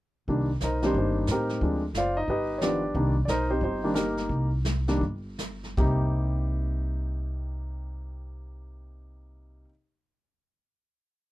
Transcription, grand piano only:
0.28 0.48 D#3 soft
0.28 0.48 G3 soft
0.28 0.48 A#3 soft
0.28 0.48 D4 medium
0.63 0.83 D#4 medium
0.63 0.83 A#4 medium
0.63 0.84 C5 soft
0.63 0.83 D#5 medium
0.82 1.26 D#3 medium
0.82 1.26 G3 medium
0.82 1.26 A#3 soft
0.82 0.96 C4 medium
0.82 1.26 D4 medium
0.82 0.96 D#4 medium
0.82 0.96 G4 medium
0.82 0.96 C5 medium
0.98 1.28 C4 soft
0.98 1.28 D#4 medium
0.98 1.28 G4 soft
0.98 1.27 C5 medium
1.31 1.61 C4 soft
1.31 1.61 D#4 medium
1.31 1.81 G4 medium
1.31 1.80 A#4 medium
1.62 1.81 F3 soft
1.62 1.81 G#3 soft
1.62 1.81 C4 soft
1.62 1.81 D4 medium
1.97 2.16 F4 medium
1.97 2.17 C5 medium
1.97 2.17 D5 medium
1.97 2.17 F5 medium
2.17 2.28 D#4 medium
2.17 2.28 D#5 medium
2.30 2.60 D#4 medium
2.30 2.60 G4 medium
2.30 2.60 B4 medium
2.30 2.60 D#5 medium
2.58 2.61 C#5 soft
2.62 2.81 D#3 soft
2.62 2.81 F3 soft
2.62 2.81 B3 soft
2.62 2.95 D4 medium
2.62 2.81 F4 soft
2.62 3.12 G4 medium
2.62 2.93 B4 medium
2.62 3.13 D5 medium
2.95 3.14 D#3 medium
2.95 3.14 G3 soft
2.95 3.14 A#3 soft
2.95 3.14 D4 medium
3.25 3.28 D5 medium
3.25 3.49 D#5 medium
3.30 3.49 D#4 medium
3.30 3.49 A#4 medium
3.30 3.49 C5 medium
3.50 3.62 C4 medium
3.50 3.62 D#4 medium
3.50 3.62 G4 medium
3.50 3.62 C5 medium
3.64 3.95 C4 medium
3.64 3.94 D#4 medium
3.64 3.95 G4 soft
3.64 3.94 C5 medium
3.84 3.95 D#3 medium
3.84 3.95 G3 medium
3.84 3.93 A#3 medium
3.84 3.95 D4 medium
3.94 4.48 A#3 medium
3.94 4.49 D#4 medium
3.94 4.49 G4 medium
3.94 4.48 A#4 medium
4.88 5.01 D#3 medium
4.88 5.01 G3 medium
4.88 5.01 A#3 medium
4.88 5.01 D4 medium
5.78 9.68 C3 medium
5.78 9.69 G3 medium
5.78 9.70 A#3 soft
5.78 9.71 D#4 medium
5.78 9.64 G4 medium

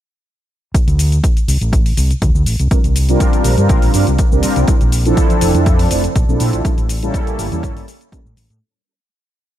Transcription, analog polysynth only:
2.71 2.78 G3 medium
2.71 2.78 C4 medium
2.71 2.78 D4 medium
2.71 2.78 F4 medium
2.71 2.78 A#4 medium
3.09 3.55 G3 medium
3.09 3.55 C4 medium
3.09 3.55 D4 medium
3.09 3.55 F4 medium
3.09 3.55 A#4 loud
3.58 3.91 G3 medium
3.58 3.92 C4 medium
3.58 3.92 D4 medium
3.58 3.92 F4 medium
3.58 3.92 A#4 medium
3.94 4.05 G3 medium
3.94 4.05 C4 medium
3.94 4.05 D4 medium
3.94 4.05 F4 medium
3.94 4.05 A#4 medium
4.31 4.65 G3 medium
4.31 4.65 C4 medium
4.31 4.65 D4 medium
4.31 4.65 F4 medium
4.31 4.66 A#4 medium
4.67 4.74 F3 medium
4.67 4.75 C4 medium
4.67 4.75 D4 medium
4.67 4.75 E4 medium
4.67 4.75 A4 medium
5.05 5.52 F3 loud
5.05 5.52 C4 medium
5.05 5.52 D4 medium
5.05 5.52 E4 medium
5.05 5.52 A4 loud
5.54 5.88 F3 medium
5.54 5.88 C4 medium
5.54 5.88 D4 medium
5.54 5.88 E4 medium
5.54 5.89 A4 medium
5.90 6.01 F3 medium
5.90 6.02 C4 medium
5.90 6.02 D4 medium
5.90 6.02 E4 medium
5.90 6.02 A4 medium
6.28 6.62 F3 medium
6.28 6.62 C4 medium
6.28 6.62 D4 medium
6.28 6.62 E4 medium
6.28 6.62 A4 medium
6.65 6.71 G3 medium
6.65 6.72 A#3 medium
6.65 6.72 C#4 medium
6.65 6.72 E4 medium
6.65 6.72 A4 medium
7.02 7.48 G3 loud
7.02 7.48 A#3 medium
7.02 7.49 C#4 medium
7.02 7.49 E4 medium
7.02 7.49 A4 loud
7.51 7.85 G3 medium
7.51 7.85 A#3 medium
7.51 7.85 C#4 medium
7.51 7.85 E4 medium
7.51 7.86 A4 medium
8.12 8.19 G3 medium
8.12 8.19 A#3 medium
8.12 8.19 C#4 medium
8.12 8.19 E4 medium
8.12 8.19 A4 loud

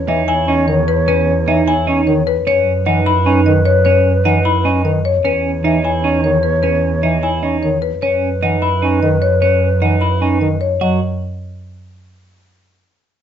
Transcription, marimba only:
0.08 0.34 E5 medium
0.28 0.54 G#5 medium
0.68 0.94 C#5 medium
0.88 1.07 B4 medium
1.08 1.33 B4 medium
1.48 1.73 E5 medium
1.68 1.93 G#5 medium
2.07 2.33 C#5 medium
2.27 2.53 B4 medium
2.47 2.73 C#5 medium
2.86 3.12 F#5 medium
3.06 3.32 B5 medium
3.46 3.72 D#5 medium
3.65 3.84 C#5 medium
3.85 4.11 C#5 medium
4.25 4.51 F#5 medium
4.45 4.71 B5 medium
4.85 5.11 D#5 medium
5.05 5.31 C#5 medium
5.25 5.51 B4 medium
5.65 5.90 E5 medium
5.85 6.10 G#5 medium
6.24 6.50 C#5 medium
6.43 6.62 B4 medium
6.63 6.89 B4 medium
7.03 7.29 E5 medium
7.23 7.49 G#5 medium
7.63 7.89 C#5 medium
7.82 8.08 B4 medium
8.02 8.28 C#5 medium
8.43 8.68 F#5 medium
8.62 8.88 B5 medium
9.03 9.28 D#5 medium
9.22 9.41 C#5 medium
9.42 9.68 C#5 medium
9.82 10.07 F#5 medium
10.01 10.27 B5 medium
10.41 10.67 D#5 soft
10.61 10.87 C#5 medium
10.81 11.00 D#5 medium

